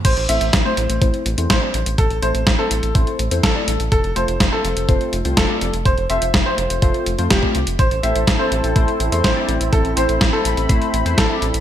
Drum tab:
CC |x---------------|----------------|----------------|----------------|
HH |xxxxx-xxxxxxx-xx|xxxxx-xxxxxxx-xx|xxxxx-xxxxxxx-xx|xxxxx-xxxxxxx-xx|
SD |----o-------o---|----o-------o---|----o-------o---|----o-------o---|
BD |o---o---o---o---|o---o---o---o---|o---o---o---o---|o---o---o---oo--|

CC |----------------|----------------|
HH |xxxxx-xxxxxxx-xx|xxxxx-xxxxxxx-xx|
SD |----o-------o---|----o-------o---|
BD |o---o---o---o---|o---o---o---o---|